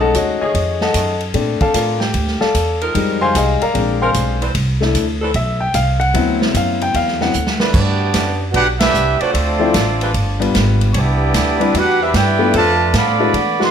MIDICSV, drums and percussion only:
0, 0, Header, 1, 2, 480
1, 0, Start_track
1, 0, Key_signature, 1, "major"
1, 0, Tempo, 399734
1, 1613, Time_signature, 4, 2, 24, 8
1, 16462, End_track
2, 0, Start_track
2, 0, Title_t, "Drums"
2, 174, Note_on_c, 9, 44, 66
2, 174, Note_on_c, 9, 51, 75
2, 175, Note_on_c, 9, 36, 26
2, 294, Note_off_c, 9, 44, 0
2, 294, Note_off_c, 9, 51, 0
2, 295, Note_off_c, 9, 36, 0
2, 654, Note_on_c, 9, 36, 23
2, 656, Note_on_c, 9, 51, 74
2, 774, Note_off_c, 9, 36, 0
2, 776, Note_off_c, 9, 51, 0
2, 973, Note_on_c, 9, 38, 51
2, 1093, Note_off_c, 9, 38, 0
2, 1129, Note_on_c, 9, 44, 64
2, 1129, Note_on_c, 9, 51, 86
2, 1133, Note_on_c, 9, 36, 29
2, 1250, Note_off_c, 9, 44, 0
2, 1250, Note_off_c, 9, 51, 0
2, 1253, Note_off_c, 9, 36, 0
2, 1447, Note_on_c, 9, 51, 49
2, 1567, Note_off_c, 9, 51, 0
2, 1608, Note_on_c, 9, 51, 72
2, 1612, Note_on_c, 9, 36, 19
2, 1728, Note_off_c, 9, 51, 0
2, 1732, Note_off_c, 9, 36, 0
2, 1927, Note_on_c, 9, 51, 56
2, 1932, Note_on_c, 9, 36, 64
2, 2047, Note_off_c, 9, 51, 0
2, 2052, Note_off_c, 9, 36, 0
2, 2091, Note_on_c, 9, 44, 71
2, 2091, Note_on_c, 9, 51, 86
2, 2094, Note_on_c, 9, 36, 28
2, 2211, Note_off_c, 9, 44, 0
2, 2211, Note_off_c, 9, 51, 0
2, 2214, Note_off_c, 9, 36, 0
2, 2408, Note_on_c, 9, 38, 54
2, 2528, Note_off_c, 9, 38, 0
2, 2566, Note_on_c, 9, 51, 72
2, 2572, Note_on_c, 9, 36, 28
2, 2686, Note_off_c, 9, 51, 0
2, 2692, Note_off_c, 9, 36, 0
2, 2731, Note_on_c, 9, 38, 35
2, 2851, Note_off_c, 9, 38, 0
2, 2891, Note_on_c, 9, 38, 58
2, 3011, Note_off_c, 9, 38, 0
2, 3057, Note_on_c, 9, 44, 57
2, 3057, Note_on_c, 9, 51, 81
2, 3058, Note_on_c, 9, 36, 24
2, 3177, Note_off_c, 9, 44, 0
2, 3177, Note_off_c, 9, 51, 0
2, 3178, Note_off_c, 9, 36, 0
2, 3379, Note_on_c, 9, 51, 46
2, 3499, Note_off_c, 9, 51, 0
2, 3541, Note_on_c, 9, 36, 23
2, 3541, Note_on_c, 9, 51, 80
2, 3661, Note_off_c, 9, 36, 0
2, 3661, Note_off_c, 9, 51, 0
2, 4021, Note_on_c, 9, 36, 21
2, 4022, Note_on_c, 9, 44, 59
2, 4022, Note_on_c, 9, 51, 80
2, 4141, Note_off_c, 9, 36, 0
2, 4142, Note_off_c, 9, 44, 0
2, 4142, Note_off_c, 9, 51, 0
2, 4340, Note_on_c, 9, 51, 52
2, 4460, Note_off_c, 9, 51, 0
2, 4500, Note_on_c, 9, 51, 71
2, 4503, Note_on_c, 9, 36, 24
2, 4620, Note_off_c, 9, 51, 0
2, 4623, Note_off_c, 9, 36, 0
2, 4975, Note_on_c, 9, 44, 64
2, 4975, Note_on_c, 9, 51, 79
2, 4979, Note_on_c, 9, 36, 26
2, 5095, Note_off_c, 9, 44, 0
2, 5095, Note_off_c, 9, 51, 0
2, 5100, Note_off_c, 9, 36, 0
2, 5305, Note_on_c, 9, 51, 50
2, 5425, Note_off_c, 9, 51, 0
2, 5459, Note_on_c, 9, 51, 82
2, 5460, Note_on_c, 9, 36, 25
2, 5579, Note_off_c, 9, 51, 0
2, 5580, Note_off_c, 9, 36, 0
2, 5784, Note_on_c, 9, 38, 52
2, 5905, Note_off_c, 9, 38, 0
2, 5939, Note_on_c, 9, 44, 58
2, 5939, Note_on_c, 9, 51, 80
2, 5940, Note_on_c, 9, 36, 25
2, 6059, Note_off_c, 9, 44, 0
2, 6059, Note_off_c, 9, 51, 0
2, 6060, Note_off_c, 9, 36, 0
2, 6412, Note_on_c, 9, 51, 75
2, 6416, Note_on_c, 9, 36, 23
2, 6532, Note_off_c, 9, 51, 0
2, 6536, Note_off_c, 9, 36, 0
2, 6891, Note_on_c, 9, 44, 68
2, 6891, Note_on_c, 9, 51, 85
2, 6895, Note_on_c, 9, 36, 20
2, 7011, Note_off_c, 9, 44, 0
2, 7011, Note_off_c, 9, 51, 0
2, 7015, Note_off_c, 9, 36, 0
2, 7214, Note_on_c, 9, 51, 45
2, 7334, Note_off_c, 9, 51, 0
2, 7376, Note_on_c, 9, 36, 21
2, 7377, Note_on_c, 9, 51, 78
2, 7496, Note_off_c, 9, 36, 0
2, 7497, Note_off_c, 9, 51, 0
2, 7705, Note_on_c, 9, 38, 70
2, 7825, Note_off_c, 9, 38, 0
2, 7858, Note_on_c, 9, 36, 32
2, 7858, Note_on_c, 9, 44, 72
2, 7858, Note_on_c, 9, 51, 84
2, 7978, Note_off_c, 9, 36, 0
2, 7978, Note_off_c, 9, 44, 0
2, 7978, Note_off_c, 9, 51, 0
2, 8183, Note_on_c, 9, 51, 55
2, 8303, Note_off_c, 9, 51, 0
2, 8338, Note_on_c, 9, 36, 26
2, 8338, Note_on_c, 9, 51, 72
2, 8458, Note_off_c, 9, 36, 0
2, 8458, Note_off_c, 9, 51, 0
2, 8500, Note_on_c, 9, 38, 33
2, 8620, Note_off_c, 9, 38, 0
2, 8658, Note_on_c, 9, 38, 58
2, 8778, Note_off_c, 9, 38, 0
2, 8807, Note_on_c, 9, 44, 67
2, 8927, Note_off_c, 9, 44, 0
2, 8965, Note_on_c, 9, 38, 76
2, 9085, Note_off_c, 9, 38, 0
2, 9122, Note_on_c, 9, 38, 90
2, 9243, Note_off_c, 9, 38, 0
2, 9292, Note_on_c, 9, 49, 98
2, 9294, Note_on_c, 9, 36, 89
2, 9412, Note_off_c, 9, 49, 0
2, 9414, Note_off_c, 9, 36, 0
2, 9771, Note_on_c, 9, 44, 59
2, 9771, Note_on_c, 9, 51, 83
2, 9772, Note_on_c, 9, 38, 79
2, 9777, Note_on_c, 9, 36, 21
2, 9891, Note_off_c, 9, 44, 0
2, 9891, Note_off_c, 9, 51, 0
2, 9892, Note_off_c, 9, 38, 0
2, 9897, Note_off_c, 9, 36, 0
2, 10256, Note_on_c, 9, 36, 31
2, 10256, Note_on_c, 9, 51, 75
2, 10376, Note_off_c, 9, 36, 0
2, 10376, Note_off_c, 9, 51, 0
2, 10572, Note_on_c, 9, 51, 81
2, 10573, Note_on_c, 9, 38, 115
2, 10692, Note_off_c, 9, 51, 0
2, 10693, Note_off_c, 9, 38, 0
2, 10738, Note_on_c, 9, 44, 63
2, 10858, Note_off_c, 9, 44, 0
2, 11054, Note_on_c, 9, 51, 49
2, 11174, Note_off_c, 9, 51, 0
2, 11217, Note_on_c, 9, 36, 21
2, 11222, Note_on_c, 9, 51, 83
2, 11337, Note_off_c, 9, 36, 0
2, 11342, Note_off_c, 9, 51, 0
2, 11696, Note_on_c, 9, 36, 20
2, 11696, Note_on_c, 9, 44, 64
2, 11696, Note_on_c, 9, 51, 86
2, 11697, Note_on_c, 9, 38, 90
2, 11816, Note_off_c, 9, 36, 0
2, 11816, Note_off_c, 9, 44, 0
2, 11816, Note_off_c, 9, 51, 0
2, 11817, Note_off_c, 9, 38, 0
2, 12020, Note_on_c, 9, 51, 58
2, 12140, Note_off_c, 9, 51, 0
2, 12178, Note_on_c, 9, 51, 69
2, 12179, Note_on_c, 9, 36, 31
2, 12298, Note_off_c, 9, 51, 0
2, 12299, Note_off_c, 9, 36, 0
2, 12507, Note_on_c, 9, 51, 65
2, 12627, Note_off_c, 9, 51, 0
2, 12660, Note_on_c, 9, 36, 28
2, 12663, Note_on_c, 9, 44, 58
2, 12663, Note_on_c, 9, 51, 79
2, 12664, Note_on_c, 9, 38, 84
2, 12780, Note_off_c, 9, 36, 0
2, 12783, Note_off_c, 9, 44, 0
2, 12783, Note_off_c, 9, 51, 0
2, 12784, Note_off_c, 9, 38, 0
2, 12981, Note_on_c, 9, 51, 50
2, 13101, Note_off_c, 9, 51, 0
2, 13138, Note_on_c, 9, 51, 77
2, 13139, Note_on_c, 9, 36, 29
2, 13258, Note_off_c, 9, 51, 0
2, 13259, Note_off_c, 9, 36, 0
2, 13618, Note_on_c, 9, 36, 25
2, 13618, Note_on_c, 9, 44, 65
2, 13618, Note_on_c, 9, 51, 85
2, 13619, Note_on_c, 9, 38, 79
2, 13738, Note_off_c, 9, 36, 0
2, 13738, Note_off_c, 9, 44, 0
2, 13738, Note_off_c, 9, 51, 0
2, 13739, Note_off_c, 9, 38, 0
2, 13940, Note_on_c, 9, 51, 51
2, 14060, Note_off_c, 9, 51, 0
2, 14100, Note_on_c, 9, 36, 27
2, 14104, Note_on_c, 9, 51, 79
2, 14220, Note_off_c, 9, 36, 0
2, 14224, Note_off_c, 9, 51, 0
2, 14577, Note_on_c, 9, 36, 28
2, 14579, Note_on_c, 9, 44, 56
2, 14579, Note_on_c, 9, 51, 79
2, 14580, Note_on_c, 9, 38, 81
2, 14697, Note_off_c, 9, 36, 0
2, 14699, Note_off_c, 9, 44, 0
2, 14699, Note_off_c, 9, 51, 0
2, 14700, Note_off_c, 9, 38, 0
2, 15053, Note_on_c, 9, 51, 74
2, 15054, Note_on_c, 9, 36, 20
2, 15173, Note_off_c, 9, 51, 0
2, 15174, Note_off_c, 9, 36, 0
2, 15533, Note_on_c, 9, 44, 59
2, 15533, Note_on_c, 9, 51, 81
2, 15535, Note_on_c, 9, 36, 24
2, 15535, Note_on_c, 9, 38, 81
2, 15653, Note_off_c, 9, 44, 0
2, 15653, Note_off_c, 9, 51, 0
2, 15655, Note_off_c, 9, 36, 0
2, 15655, Note_off_c, 9, 38, 0
2, 16015, Note_on_c, 9, 36, 26
2, 16019, Note_on_c, 9, 51, 79
2, 16135, Note_off_c, 9, 36, 0
2, 16139, Note_off_c, 9, 51, 0
2, 16344, Note_on_c, 9, 38, 60
2, 16462, Note_off_c, 9, 38, 0
2, 16462, End_track
0, 0, End_of_file